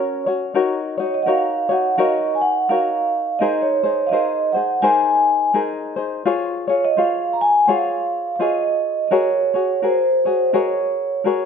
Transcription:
0.00 0.27 C#4 medium
0.00 0.26 F#4 medium
0.00 0.26 A#4 medium
0.00 0.24 C#5 medium
0.00 0.25 C#5 medium
0.26 0.55 C#4 soft
0.26 0.54 F#4 medium
0.26 0.55 C#5 medium
0.54 0.98 D#4 medium
0.54 0.98 F#4 loud
0.54 0.98 A#4 medium
0.54 0.96 C#5 medium
0.98 1.26 D#4 soft
0.98 1.26 F#4 soft
0.98 1.27 C#5 medium
0.98 1.14 C#5 medium
1.14 1.22 D#5 medium
1.23 1.69 A#4 medium
1.23 1.28 F#5 medium
1.27 1.70 D#4 medium
1.27 1.69 F#4 medium
1.27 1.68 C#5 medium
1.27 1.72 F5 medium
1.69 1.97 D#4 soft
1.69 1.97 F#4 soft
1.69 1.98 C#5 medium
1.69 1.94 F#5 medium
1.96 2.70 D#4 medium
1.96 2.70 F#4 medium
1.96 2.69 A#4 medium
1.96 2.70 C#5 medium
1.96 2.00 F5 medium
2.00 2.35 D#5 medium
2.35 2.42 G#5 medium
2.41 2.71 F#5 medium
2.69 3.41 D#4 medium
2.69 3.41 F#4 medium
2.69 3.40 A#4 medium
2.69 3.41 C#5 medium
2.69 3.43 F5 loud
3.39 3.84 D#4 medium
3.39 3.83 G#4 medium
3.39 3.84 A#4 medium
3.39 3.82 C5 medium
3.39 3.62 D#5 medium
3.62 4.08 C#5 medium
3.83 4.11 D#4 soft
3.83 4.12 G#4 soft
3.83 4.12 C5 medium
4.07 4.55 D#5 loud
4.07 4.12 F5 medium
4.11 4.55 D#4 medium
4.11 4.55 G#4 medium
4.11 4.55 A#4 medium
4.11 4.53 C5 medium
4.53 4.81 D#4 soft
4.53 4.82 G#4 soft
4.53 4.83 C5 soft
4.53 4.83 F#5 medium
4.82 5.53 D#4 medium
4.82 5.54 G#4 medium
4.82 5.53 A#4 medium
4.82 5.55 C5 medium
4.82 5.50 G#5 loud
5.54 5.97 D#4 medium
5.54 5.96 G#4 medium
5.54 5.97 A#4 medium
5.54 5.95 C5 medium
5.96 6.25 D#4 soft
5.96 6.25 G#4 soft
5.96 6.24 C5 medium
6.25 6.69 F4 medium
6.25 6.68 G#4 medium
6.25 6.69 C5 medium
6.25 6.66 C#5 medium
6.68 6.97 F4 soft
6.68 6.97 G#4 soft
6.68 6.97 C#5 medium
6.68 6.84 C#5 medium
6.84 6.99 D#5 loud
6.97 7.67 F4 medium
6.97 7.69 G#4 medium
6.97 7.66 C5 medium
6.97 7.69 C#5 medium
6.97 7.34 F5 medium
7.33 7.41 A#5 medium
7.41 7.65 G#5 loud
7.66 8.39 F4 medium
7.66 8.41 G#4 medium
7.66 8.38 C5 medium
7.66 8.41 C#5 medium
7.66 7.71 F#5 medium
7.70 8.35 F5 medium
8.36 9.10 C5 medium
8.36 8.41 F5 medium
8.40 9.11 F4 medium
8.40 9.12 G#4 medium
8.40 9.12 C#5 medium
8.40 9.07 D#5 loud
9.08 9.54 F#4 medium
9.08 9.54 A#4 medium
9.08 9.85 C#5 medium
9.08 9.13 D#5 medium
9.12 9.54 G#4 medium
9.12 9.53 C#5 medium
9.54 9.81 F#4 soft
9.54 9.82 G#4 soft
9.54 9.82 C#5 medium
9.82 10.26 F#4 medium
9.82 10.25 G#4 medium
9.82 10.25 A#4 medium
9.82 10.52 C5 medium
10.25 10.52 F#4 soft
10.25 10.53 G#4 medium
10.25 10.53 C#5 medium
10.51 11.24 F#4 medium
10.51 11.26 G#4 medium
10.51 11.23 A#4 medium
10.51 11.26 C#5 medium
10.51 10.56 D#5 soft
10.57 11.45 C#5 medium
11.24 11.45 F#4 medium
11.24 11.45 G#4 medium
11.24 11.45 A#4 medium
11.24 11.45 C#5 medium

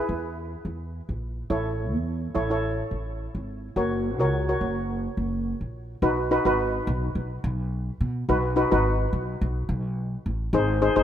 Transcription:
0.00 0.62 E4 medium
0.00 0.62 G#4 medium
0.00 0.62 B4 medium
0.09 0.54 E2 medium
0.65 1.00 E2 medium
1.09 1.42 A#1 medium
1.50 1.93 A1 medium
1.50 2.01 E4 medium
1.50 2.02 A4 medium
1.50 2.02 C#5 medium
1.93 2.26 E2 medium
2.35 2.80 A1 medium
2.35 2.44 E4 medium
2.35 2.44 A4 medium
2.35 2.44 C#5 medium
2.50 3.17 E4 medium
2.50 3.17 A4 medium
2.50 3.18 C#5 medium
2.91 3.26 A1 medium
3.35 3.68 G#1 medium
3.76 4.19 F#1 medium
3.76 4.02 F#4 medium
3.76 4.02 A#4 medium
3.76 4.02 C#5 medium
4.19 4.52 C#2 medium
4.19 4.36 F#4 medium
4.19 4.36 A#4 medium
4.19 4.36 C#5 medium
4.49 5.15 F#4 medium
4.49 5.16 A#4 medium
4.49 5.16 C#5 medium
4.61 5.06 F#1 medium
5.17 5.52 F#1 medium
5.61 5.94 A#1 medium
6.02 6.37 B1 medium
6.02 6.20 D#4 medium
6.02 6.21 F#4 medium
6.02 6.20 B4 medium
6.31 6.40 D#4 medium
6.31 6.40 F#4 medium
6.31 6.40 B4 loud
6.45 6.78 G#1 medium
6.45 7.12 D#4 medium
6.45 7.12 F#4 medium
6.45 7.13 B4 loud
6.87 7.10 B1 loud
7.15 7.38 B1 medium
7.44 7.89 B1 loud
8.01 8.23 B2 medium
8.29 8.63 B1 loud
8.29 8.46 D#4 medium
8.29 8.46 F#4 medium
8.29 8.47 B4 medium
8.56 8.65 D#4 medium
8.56 8.66 F#4 medium
8.56 8.66 B4 medium
8.71 9.05 G#1 medium
8.71 9.38 D#4 medium
8.71 9.38 F#4 medium
8.71 9.38 B4 medium
9.13 9.35 B1 medium
9.41 9.64 B1 medium
9.69 10.14 B1 loud
10.26 10.48 A1 medium
10.53 10.88 G#1 loud
10.53 10.71 D#4 medium
10.53 10.72 G#4 medium
10.53 10.72 C5 medium
10.82 10.91 D#4 medium
10.82 10.91 G#4 medium
10.82 10.91 C5 loud
10.96 11.03 F#1 medium
10.96 11.03 D#4 medium
10.96 11.03 G#4 medium
10.96 11.03 C5 loud

